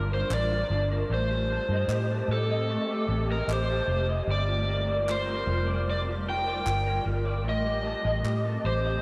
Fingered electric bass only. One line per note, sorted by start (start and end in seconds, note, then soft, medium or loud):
0.00 0.22 G1 medium
0.30 0.62 A1 medium
0.70 1.02 G1 medium
1.10 1.58 A1 loud
1.69 1.85 G2 medium
1.88 2.21 A2 loud
2.28 2.77 A2 medium
3.08 3.41 A1 medium
3.48 3.80 A1 medium
3.88 4.20 F1 medium
4.27 5.43 G1 loud
5.47 6.63 F1 medium
6.66 6.99 G1 medium
7.06 7.45 G1 medium
7.45 7.93 A1 loud
8.05 8.21 A1 medium
8.24 8.57 A2 loud
8.65 8.97 A1 medium